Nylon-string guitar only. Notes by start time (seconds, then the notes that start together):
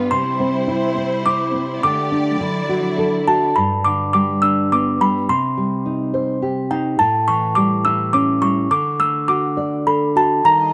Already playing: B3 D4
0.11 C3
0.40 C4
0.68 E4
0.97 C4
1.26 E4
1.54 C4
1.84 D3
2.12 D4
2.40 D3
2.69 F#4
2.98 A4
3.28 F#4
3.57 G2
3.86 D3
4.14 G3
4.43 D4
4.72 B3
5.00 G3
5.29 C3
5.57 G3
5.86 D#4
6.14 C5
6.42 G4
6.71 D#4
7.00 A2
7.28 E3
7.57 G3
7.86 E4
8.14 C#4
8.42 G3
8.70 D3
8.99 A3
9.28 F#4
9.57 D5
9.87 A4
10.16 F#4
10.44 D#3